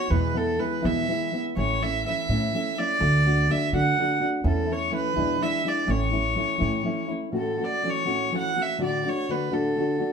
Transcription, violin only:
0.00 0.12 C#5 medium
0.10 0.38 B4 medium
0.37 0.60 A4 medium
0.59 0.87 B4 medium
0.86 1.40 E5 medium
1.56 1.84 C#5 medium
1.83 2.06 E5 medium
2.06 2.80 E5 medium
2.78 3.53 D5 medium
3.51 3.73 E5 medium
3.75 4.25 F#5 medium
4.45 4.73 A4 medium
4.72 4.94 C#5 medium
4.95 5.44 B4 medium
5.42 5.69 E5 medium
5.68 5.91 D5 medium
5.90 7.11 C#5 medium
7.37 7.65 A4 medium
7.64 7.91 D5 medium
7.89 8.35 C#5 medium
8.37 8.63 F#5 medium
8.62 8.82 E5 medium
8.83 9.10 D5 medium
9.09 9.32 C#5 medium
9.31 9.55 B4 medium
9.53 10.07 A4 medium

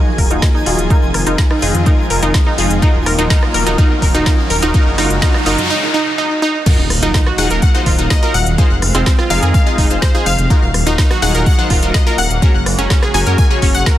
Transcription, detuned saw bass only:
0.18 0.28 D#1 medium
0.31 0.39 D#1 medium
0.66 0.76 D#1 medium
0.79 0.87 D#1 medium
1.03 1.11 F1 medium
1.14 1.24 F1 medium
1.27 1.36 F1 medium
1.62 1.72 F1 medium
1.75 1.84 F2 medium
2.10 2.20 F1 medium
2.23 2.32 F1 medium
2.58 2.68 F1 medium
2.71 2.80 F1 medium
2.95 3.03 D#1 medium
3.06 3.16 D#1 loud
3.19 3.27 D#1 medium
3.54 3.64 D#1 loud
3.67 3.75 D#1 medium
4.02 4.12 D#1 loud
4.14 4.23 D#1 medium
4.50 4.60 D#1 medium
4.62 4.71 D#1 medium
4.87 4.95 F#1 medium
4.98 5.08 F#1 medium
5.11 5.19 F#1 medium
5.46 5.56 F#1 loud
5.59 5.67 F#2 medium
6.79 6.88 D#1 medium
6.90 7.00 D#1 medium
7.03 7.12 D#1 medium
7.38 7.48 D#1 medium
7.51 7.60 D#1 medium
7.86 7.96 D#1 loud
7.99 8.07 D#1 medium
8.34 8.44 D#1 medium
8.47 8.55 D#1 medium
8.70 8.79 F1 medium
8.82 8.92 F1 loud
8.95 9.03 F1 medium
9.30 9.40 F1 loud
9.43 9.51 F2 medium
9.78 9.88 F1 loud
9.91 9.99 F1 medium
10.26 10.36 F1 loud
10.39 10.48 F1 medium
10.63 10.72 D#1 medium
10.74 10.84 D#1 loud
10.87 10.95 D#1 medium
11.22 11.32 D#1 loud
11.35 11.43 D#1 medium
11.70 11.80 D#1 loud
11.82 11.91 D#1 medium
12.18 12.28 D#1 medium
12.31 12.39 D#1 medium
12.55 12.63 F#1 medium
12.66 12.76 F#1 loud
12.79 12.87 F#1 medium
13.14 13.24 F#1 medium
13.27 13.35 F#2 medium
13.62 13.72 F#1 loud
13.75 13.84 F#1 medium

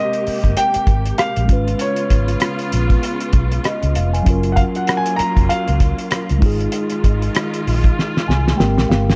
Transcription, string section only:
0.00 1.47 C3 medium
0.00 1.47 A#3 medium
0.00 1.47 G4 medium
1.48 4.24 C#3 medium
1.48 4.24 B3 medium
1.48 4.23 F4 medium
4.28 6.41 F#3 medium
4.28 6.41 A#3 medium
4.28 6.40 F4 medium
6.41 8.56 D#3 medium
6.41 8.56 G#3 medium
6.41 9.16 F4 medium
8.58 9.16 C3 medium
8.58 9.16 A#3 medium

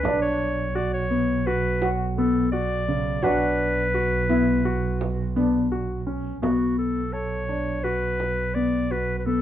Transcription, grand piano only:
0.05 0.62 D4 medium
0.75 1.04 F#4 medium
1.11 1.39 B3 medium
1.47 2.04 F#4 medium
2.18 2.46 B3 medium
2.53 2.81 F#4 medium
2.88 3.17 C#3 medium
3.24 3.81 D4 medium
3.94 4.23 F#4 medium
4.30 4.58 B3 medium
4.65 5.22 F#4 medium
5.36 5.65 B3 medium
5.72 6.00 F#4 medium
6.07 6.35 C#4 medium
6.42 6.99 B3 medium
7.13 7.42 A4 medium
7.49 7.77 D4 medium
7.84 8.41 F#4 medium
8.56 8.84 B3 medium
8.91 9.19 F#4 medium
9.26 9.42 B3 medium

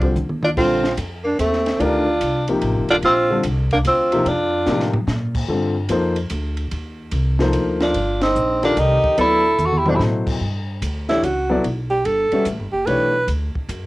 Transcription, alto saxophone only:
0.00 0.17 F3 medium
0.44 0.50 F4 medium
0.58 0.96 F4 loud
1.26 1.38 D4 medium
1.39 1.82 C4 medium
1.80 2.48 F4 medium
2.91 2.96 F4 medium
3.04 3.42 F4 loud
3.73 3.79 D4 medium
3.87 4.28 F4 medium
4.28 4.95 F4 medium
7.81 8.19 F4 medium
8.23 8.61 D#4 medium
8.64 8.80 F4 medium
8.78 9.18 G4 medium
9.19 9.65 A4 loud
9.65 9.80 A4 medium
9.78 9.90 G4 medium
9.89 9.96 F#4 medium
9.95 10.00 G4 medium
11.09 11.25 E4 medium
11.24 11.64 F#4 medium
11.90 12.07 G4 medium
12.06 12.46 A4 medium
12.72 12.88 G4 medium
12.86 13.28 B4 medium

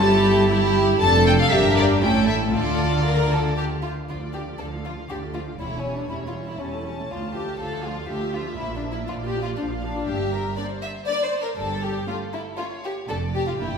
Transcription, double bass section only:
0.00 0.97 G1 loud
1.02 1.48 F1 loud
1.52 2.01 G1 loud
2.02 2.54 A1 medium
2.53 3.89 D2 medium
4.09 4.54 D2 soft
4.60 5.04 D2 soft
5.10 5.54 D2 soft
5.59 6.03 E1 medium
6.10 6.54 E1 soft
6.60 7.03 E1 soft
7.09 7.53 D2 medium
7.59 8.03 D2 soft
8.09 8.52 D2 medium
8.58 9.02 A#1 medium
9.08 9.52 A#1 medium
9.57 10.01 A#1 medium
10.07 10.49 G1 medium
11.57 11.99 G1 medium
13.08 13.50 F1 medium
13.59 13.78 G1 medium

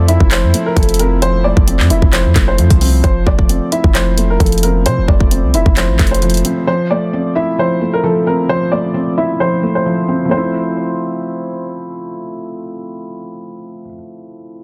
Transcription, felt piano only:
0.00 0.30 F3 medium
0.00 0.52 A3 medium
0.00 0.98 C4 medium
0.09 1.22 E4 loud
0.31 0.75 F3 medium
0.54 1.43 A3 medium
0.76 1.20 F3 medium
0.99 1.65 C4 medium
1.22 2.11 F3 medium
1.45 2.34 A3 medium
1.67 2.80 C4 medium
1.90 3.04 E4 loud
2.13 2.57 F3 medium
2.36 3.04 A3 medium
2.59 3.02 F3 medium
2.81 3.04 C4 medium
3.04 3.94 F3 medium
3.27 4.16 A3 medium
3.49 4.62 C4 medium
3.72 4.86 E4 medium
3.95 4.38 F3 medium
4.17 5.07 A3 medium
4.40 4.84 F3 medium
4.63 5.30 C4 medium
4.86 5.75 F3 medium
5.09 5.98 A3 medium
5.31 6.44 C4 medium
5.54 6.68 E4 medium
5.77 6.21 F3 medium
5.99 6.68 A3 medium
6.22 6.66 F3 medium
6.45 6.68 C4 medium
6.67 7.57 F3 medium
6.91 7.80 A3 medium
7.13 8.25 C4 medium
7.36 8.49 E4 medium
7.58 8.02 F3 medium
7.81 8.70 A3 medium
8.03 8.48 F3 medium
8.27 8.93 C4 medium
8.49 9.38 F3 medium
8.72 9.62 A3 medium
8.94 10.07 C4 medium
9.18 10.31 E4 medium
9.40 9.84 F3 medium
9.63 10.28 A3 medium
9.86 10.24 F3 medium
10.08 10.31 C4 medium
10.25 13.81 F3 medium
10.25 13.85 A3 medium
10.33 13.89 C4 medium
10.33 13.93 E4 medium

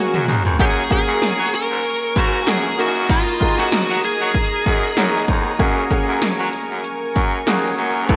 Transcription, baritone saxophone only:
0.14 0.25 F#2 medium
0.28 0.41 D#2 medium
0.45 0.56 F2 medium
0.60 0.83 F#2 loud
1.08 1.18 F#2 medium
1.22 1.29 F#3 soft
1.39 1.49 F#3 medium
1.70 1.81 G#2 medium
2.16 2.48 G#2 medium
2.47 2.70 F#2 medium
2.78 3.25 F#2 medium
3.58 3.69 F#2 medium
3.72 3.79 F#3 soft
3.90 4.00 F#3 medium
4.21 4.31 F#3 medium
4.66 4.89 F#2 medium
4.97 5.20 F#2 medium
5.28 5.52 F2 medium
5.59 5.83 F#2 loud
6.08 6.18 F#2 loud
6.22 6.29 F#3 soft
6.39 6.50 F#3 medium
6.70 6.81 F#2 medium
7.16 7.39 F#2 medium
7.46 7.70 D#2 medium
7.78 8.11 F#2 medium
8.09 8.16 A2 loud

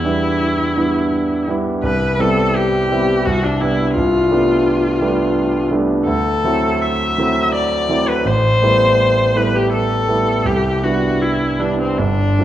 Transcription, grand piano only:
0.00 1.86 E2 soft
0.05 0.72 G3 soft
0.05 0.72 B3 soft
0.05 0.72 D4 soft
0.05 0.72 E4 soft
0.76 1.44 G3 soft
0.76 1.44 B3 soft
0.76 1.44 D4 soft
0.76 1.44 E4 soft
1.48 1.80 G3 soft
1.48 1.80 B3 soft
1.48 1.81 D4 soft
1.48 1.81 E4 soft
1.83 2.19 C2 soft
2.19 2.86 G3 soft
2.19 2.86 B3 soft
2.19 2.87 C4 soft
2.19 2.87 E4 soft
2.91 3.22 G3 soft
2.91 3.23 B3 soft
2.91 3.23 C4 soft
2.91 3.23 E4 soft
3.27 3.60 C2 soft
3.61 3.93 G3 soft
3.61 3.93 B3 soft
3.61 3.93 D4 soft
3.97 4.30 C2 soft
4.31 4.97 G3 soft
4.31 4.97 A3 soft
4.31 4.97 B3 soft
4.31 4.97 D4 soft
5.01 5.66 G3 soft
5.01 5.67 A3 soft
5.01 5.67 B3 soft
5.01 5.67 D4 soft
5.71 6.02 G3 soft
5.71 6.03 A3 soft
5.71 6.03 B3 soft
5.71 6.03 D4 soft
6.06 6.43 D2 soft
6.44 7.14 F#3 soft
6.44 7.14 A3 soft
6.44 7.15 C4 soft
6.44 7.15 E4 soft
7.18 7.85 F#3 soft
7.18 7.85 A3 soft
7.18 7.86 C4 soft
7.18 7.86 E4 soft
7.89 8.22 F#3 soft
7.89 8.23 A3 soft
7.89 8.23 C4 soft
7.89 8.23 E4 soft
8.25 8.61 A1 soft
8.62 9.31 G3 soft
8.62 9.31 A3 soft
8.62 9.31 B3 soft
8.62 9.31 E4 soft
9.35 10.04 G3 soft
9.35 10.04 A3 soft
9.35 10.05 B3 soft
9.35 10.05 E4 soft
10.08 10.41 G3 soft
10.08 10.42 A3 soft
10.08 10.42 B3 soft
10.08 10.42 E4 soft
10.45 10.81 C2 soft
10.83 11.55 G3 soft
10.83 11.55 B3 soft
10.83 11.56 D4 soft
10.83 11.56 E4 soft
11.59 11.94 G3 soft
11.59 11.94 B3 soft
11.59 11.94 D4 soft
11.59 11.95 E4 soft
11.99 12.37 G1 soft
12.38 12.44 G3 soft
12.38 12.44 A3 soft
12.38 12.44 C4 soft
12.38 12.44 F4 soft

